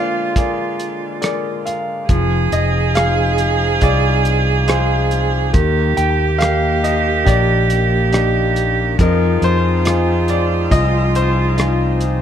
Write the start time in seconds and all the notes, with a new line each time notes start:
Already playing: D3 G#3 A#3 D4 F4 G#4 A#4 C5 D5 F5
0.36 G#4 A#4 D5, kick, closed hi-hat
0.79 closed hi-hat
1.21 G#4 A#4 D5, cross-stick, closed hi-hat
1.66 F5, closed hi-hat
2.09 F1 F3 C4 D#4 G#4, kick, closed hi-hat
2.52 F1 D#5, closed hi-hat
2.95 D#4 F4 G#4 F5, cross-stick, closed hi-hat
3.38 closed hi-hat
3.81 C2 D#4 F4 G#4 D5, kick, closed hi-hat
4.25 closed hi-hat
4.67 D#4 F4 G#4 C5, cross-stick, closed hi-hat
5.11 closed hi-hat
5.53 D#2 D#3 A#3 G4, kick, closed hi-hat
5.97 D#2 G5, closed hi-hat
6.38 A#3 D#4 G4 F5, cross-stick, closed hi-hat
6.84 D#5, closed hi-hat
7.25 A#1 D4 D#4 G4 D5, kick, closed hi-hat
7.29 G4
7.70 closed hi-hat
8.12 D4 D#4 G4, cross-stick, closed hi-hat
8.56 closed hi-hat
8.99 F2 F3 C4 D#4 F4 G#4 A#4, kick, closed hi-hat
9.42 F2 C5, closed hi-hat
9.85 D#4 F4 G#4, cross-stick, closed hi-hat
10.28 D5, closed hi-hat
10.70 C2 D#4 F4 G#4 D#5, kick, closed hi-hat
11.15 C5, closed hi-hat
11.57 D#4 F4 G#4, cross-stick, closed hi-hat
12.01 closed hi-hat